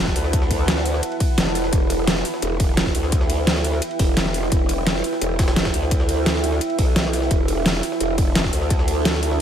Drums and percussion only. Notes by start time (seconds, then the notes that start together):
0.07 kick, snare
0.16 open hi-hat, ride
0.24 snare
0.33 kick, closed hi-hat, ride
0.42 snare
0.51 kick, closed hi-hat, ride
0.68 snare, closed hi-hat, ride
0.77 snare
0.86 open hi-hat, ride
0.94 snare
1.03 closed hi-hat, ride
1.12 ride
1.20 kick, closed hi-hat, ride
1.38 snare, closed hi-hat, ride
1.47 snare
1.55 open hi-hat, ride
1.64 snare
1.73 kick, closed hi-hat, ride
1.90 closed hi-hat, ride
2.07 snare, closed hi-hat, ride
2.25 open hi-hat, ride
2.34 snare
2.42 closed hi-hat, ride
2.60 kick, closed hi-hat, ride
2.77 snare, closed hi-hat, ride
2.86 kick, snare
2.95 open hi-hat, ride
3.03 snare
3.12 kick, closed hi-hat, ride
3.21 snare
3.30 closed hi-hat, ride
3.47 snare, closed hi-hat, ride
3.56 snare
3.64 open hi-hat, ride
3.73 snare
3.82 closed hi-hat, ride
3.91 ride
3.99 kick, closed hi-hat, open hi-hat, ride
4.17 snare, closed hi-hat, ride
4.26 snare
4.34 open hi-hat, ride
4.43 snare
4.52 kick, closed hi-hat, ride
4.69 closed hi-hat, ride
4.87 snare, closed hi-hat, ride
5.04 open hi-hat, ride
5.13 snare
5.22 closed hi-hat, ride
5.39 kick, snare, closed hi-hat, ride
5.48 snare, ride
5.56 snare, closed hi-hat, ride
5.65 kick, snare, ride
5.74 open hi-hat, ride
5.83 snare
5.91 kick, closed hi-hat, ride
6.00 snare
6.09 closed hi-hat, ride
6.26 snare, closed hi-hat, ride
6.35 snare
6.44 open hi-hat, ride
6.52 snare
6.61 closed hi-hat, ride
6.70 ride
6.79 kick, closed hi-hat, open hi-hat, ride
6.96 snare, closed hi-hat, ride
7.05 snare
7.13 open hi-hat, ride
7.22 snare
7.31 kick, closed hi-hat, ride
7.48 closed hi-hat, ride
7.66 snare, closed hi-hat, ride
7.83 open hi-hat, ride
7.92 snare
8.01 closed hi-hat, ride
8.18 kick, closed hi-hat, ride
8.35 snare, closed hi-hat, ride
8.44 kick, snare
8.53 open hi-hat, ride
8.62 snare
8.70 kick, closed hi-hat, ride
8.79 snare
8.88 closed hi-hat, ride
9.05 snare, closed hi-hat, ride
9.14 snare
9.23 open hi-hat, ride
9.31 snare